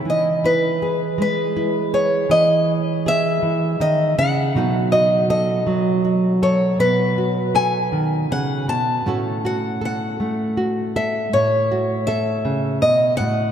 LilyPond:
<<
  \new Staff \with { instrumentName = "Steel-string acoustic guitar" } { \time 6/8 \key e \major \tempo 4. = 53 dis''8 b'4 b'4 cis''8 | dis''4 e''4 dis''8 fis''8~ | fis''8 dis''8 dis''4 r8 cis''8 | b'4 gis''4 fis''8 a''8~ |
a''8 fis''8 fis''4 r8 e''8 | cis''4 e''4 dis''8 fis''8 | }
  \new Staff \with { instrumentName = "Nylon-string guitar" } { \time 6/8 \key e \major << { b8 e'8 gis'4 e'8 gis'8~ | gis'4 gis'2 | <fis dis' fis' a'>8 fis'8 a'4 fis'8 a'8 | r8 fis'8 a'2 |
<a cis' fis' a'>8 fis'8 a'4 fis'8 a'8 | r8 fis'8 a'2 | } \\ { e4. gis4. | e4. e8 dis8 cis8 | b,4. fis4. | b,4. dis8 cis8 b,8 |
a,4. a4. | a,4. cis8 b,8 a,8 | } >> }
>>